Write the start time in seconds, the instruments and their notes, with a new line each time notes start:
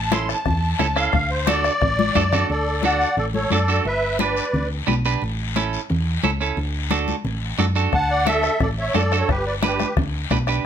Already playing: fingered electric bass A1, accordion A5
0.12 clean electric guitar C#4 E4 A4, accordion C6, bombo rim, high conga, short guiro
0.29 accordion A5, bombo rim, short guiro
0.46 fingered electric bass E2, bombo low, bombo rim, high conga, low conga, long guiro
0.79 fingered electric bass C#2, clean electric guitar C#4 E4 A4, accordion A5, bombo rim, high conga, short guiro
0.96 clean electric guitar C#4 E4 A4, accordion F5, bombo rim, short guiro
1.13 fingered electric bass D2, bombo low, bombo rim, high conga, long guiro
1.31 accordion C5
1.47 clean electric guitar D4 F#4 A4, accordion D5, bombo rim, high conga, short guiro
1.64 bombo rim, short guiro
1.81 fingered electric bass A1, bombo low, bombo rim, high conga, low conga, long guiro
1.99 high conga
2.15 fingered electric bass F#2, clean electric guitar D4 F#4 A4, bombo low, bombo rim, high conga, short guiro
2.32 clean electric guitar D4 F#4 A4, bombo rim, low conga, short guiro
2.50 fingered electric bass D2, accordion A4 D5, high conga, long guiro
2.83 clean electric guitar D4 F#4 A4, accordion D5 F#5, high conga, short guiro
3.01 short guiro
3.17 fingered electric bass A1, accordion A4 D5, high conga, low conga, long guiro
3.34 accordion A4 C#5, high conga
3.50 fingered electric bass F#2, clean electric guitar D4 F#4 A4, accordion A4 D5, high conga, short guiro
3.68 clean electric guitar D4 F#4 A4, short guiro
3.85 fingered electric bass G1, accordion B4 E5, high conga, long guiro
4.19 clean electric guitar D4 G4 B4, accordion B4 D5, high conga, short guiro
4.37 short guiro
4.53 fingered electric bass D2, high conga, low conga, long guiro
4.87 fingered electric bass B1, clean electric guitar D4 G4 B4, high conga, short guiro
5.05 clean electric guitar D4 G4 B4, short guiro
5.22 fingered electric bass A1, high conga, long guiro
5.56 clean electric guitar C#4 E4 A4, high conga, short guiro
5.73 short guiro
5.90 fingered electric bass E2, high conga, low conga, long guiro
6.23 fingered electric bass C#2, clean electric guitar C#4 E4 A4, high conga, short guiro
6.41 clean electric guitar C#4 E4 A4, short guiro
6.57 fingered electric bass D2, high conga, long guiro
6.91 clean electric guitar D4 F#4 A4, high conga, short guiro
7.08 high conga, short guiro
7.24 fingered electric bass A1, high conga, low conga, long guiro
7.58 fingered electric bass F#2, clean electric guitar D4 F#4 A4, high conga, short guiro
7.75 clean electric guitar D4 F#4 A4, short guiro
7.93 fingered electric bass D2, accordion F#5 A5, bombo low, bombo rim, high conga, long guiro
8.10 accordion D5 F#5
8.26 clean electric guitar D4 F#4 A4, accordion A4 E5, bombo rim, high conga, short guiro
8.43 bombo rim, short guiro
8.60 fingered electric bass A1, accordion A4 D5, bombo low, bombo rim, high conga, low conga, long guiro
8.79 accordion C#5 E5
8.94 fingered electric bass F#2, clean electric guitar D4 F#4 A4, accordion A4 D5, bombo rim, high conga, short guiro
9.12 clean electric guitar D4 F#4 A4, bombo rim, short guiro
9.18 accordion A4 C#5
9.28 fingered electric bass G1, accordion G4 B4, bombo low, bombo rim, high conga, long guiro
9.46 accordion B4 D5
9.62 clean electric guitar D4 G4 B4, accordion G4 B4, bombo rim, high conga, short guiro
9.79 bombo rim, high conga, short guiro
9.97 fingered electric bass D2, bombo low, bombo rim, high conga, low conga, long guiro
10.30 fingered electric bass B1, clean electric guitar D4 G4 B4, bombo low, bombo rim, high conga, short guiro
10.47 clean electric guitar D4 G4 B4, bombo rim, short guiro